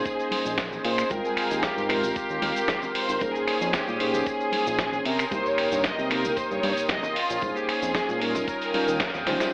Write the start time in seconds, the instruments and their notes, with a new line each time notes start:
Already playing: tine electric piano A#3 C#4 D#4 G#4 C5, violin section G#4, analog synth pad C5 D#5 G#5
0.05 kick, tambourine, shaker
0.19 tambourine, shaker
0.31 open hi-hat, high conga
0.45 analog synth bass A#1, tambourine, shaker
0.58 kick, snare, tambourine, shaker
0.72 tambourine, low conga, shaker
0.84 analog synth bass A#2, violin section C5, open hi-hat
0.98 finger snap, tambourine, shaker
1.10 analog synth bass G#1, tine electric piano G#3 C4 F4 A#4 G5, violin section A#4, analog synth pad A#4 F5 G5 C6, kick, tambourine, high conga, shaker
1.24 violin section G#4, tambourine, shaker
1.37 finger snap, open hi-hat
1.51 analog synth bass D#2, tambourine, shaker
1.63 violin section G4, kick, snare, tambourine, shaker
1.77 analog synth bass G#2, tambourine, high conga, shaker
1.89 tine electric piano G#3 C4 F4 G4 A#4, violin section A#4, finger snap, snare, open hi-hat
2.03 analog synth bass G#1, tambourine, shaker
2.15 analog synth bass D#2, violin section G4, kick, tambourine, shaker
2.29 analog synth bass D#2, tambourine, shaker
2.42 analog synth bass D#2, open hi-hat, high conga
2.56 analog synth bass G#1, tambourine, shaker
2.68 analog synth bass G#1, kick, snare, tambourine, shaker
2.82 tambourine, high bongo, low conga, shaker
2.95 violin section C5, open hi-hat
3.09 analog synth bass G#1, tambourine, shaker
3.20 analog synth bass A#1, tine electric piano A#3 C#4 D#4 G#4 C5, analog synth pad C#4 G#5 C6 D#6, violin section A#4, kick, tambourine, high conga, shaker
3.35 violin section G#4, tambourine, shaker
3.48 finger snap, open hi-hat
3.61 analog synth bass F2, tambourine, shaker
3.73 violin section G4, kick, snare, tambourine, shaker
3.87 analog synth bass A#2, tambourine, high conga, shaker
3.99 tine electric piano A#3 C#4 D#4 G#4 C5, violin section G4, open hi-hat
4.14 analog synth bass A#1, tambourine, high bongo, shaker
4.26 violin section G#4, kick, tambourine, shaker
4.40 tambourine, shaker
4.52 open hi-hat, high conga
4.66 analog synth bass A#1, tambourine, shaker
4.79 kick, snare, tambourine, shaker
4.93 tambourine, low conga, shaker
5.05 analog synth bass C3, analog synth pad A#4 G5 D#6, violin section A#4, open hi-hat
5.19 finger snap, tambourine, shaker
5.31 analog synth bass C2, tine electric piano C3 A#3 D#4 G4 A#4, violin section C5, kick, tambourine, high conga, shaker
5.46 violin section C#5, tambourine, shaker
5.58 finger snap, open hi-hat
5.72 analog synth bass G2, tambourine, shaker
5.84 violin section D#5, kick, snare, tambourine, shaker
5.98 analog synth bass C3, tambourine, high conga, shaker
6.10 tine electric piano C3 A#3 D#4 G4 A#4, violin section A#4, finger snap, snare, open hi-hat
6.25 analog synth bass C2, tambourine, shaker
6.36 analog synth bass G2, violin section C5, kick, tambourine, shaker
6.51 analog synth bass G2, violin section C#5, tambourine, shaker
6.63 analog synth bass G2, open hi-hat, high conga
6.77 analog synth bass C2, tambourine, shaker
6.88 analog synth bass C2, violin section D#5, kick, snare, tambourine, shaker
7.03 tambourine, high bongo, low conga, shaker
7.16 analog synth pad C#4 G#5 C6, violin section F4, open hi-hat
7.29 analog synth bass A#1, tambourine, shaker
7.41 analog synth bass A#1, tine electric piano A#3 C#4 D#4 G#4 C5, kick, tambourine, high conga, shaker
7.56 violin section G4, tambourine, shaker
7.69 violin section G#4, finger snap, open hi-hat
7.82 analog synth bass F2, tambourine, shaker
7.95 kick, snare, tambourine, shaker
8.09 analog synth bass A#2, tambourine, high conga, shaker
8.21 tine electric piano G3 C#4 D#4 F4 A#4, violin section A#4, open hi-hat
8.35 analog synth bass A#1, tambourine, high bongo, shaker
8.48 analog synth pad F5 G5 D#6, kick, tambourine, shaker
8.61 open hi-hat, tambourine, shaker
8.73 tine electric piano G3 C#4 D#4 F4 A#4, open hi-hat, high bongo, high conga
8.88 analog synth bass D#2, tambourine, shaker
9.00 analog synth bass D#1, kick, snare, tambourine, shaker
9.14 analog synth bass D#1, tambourine, low conga, shaker
9.26 analog synth bass D#2, tine electric piano G3 C#4 D#4 F4 C5, snare, open hi-hat
9.40 snare, tambourine, high bongo, shaker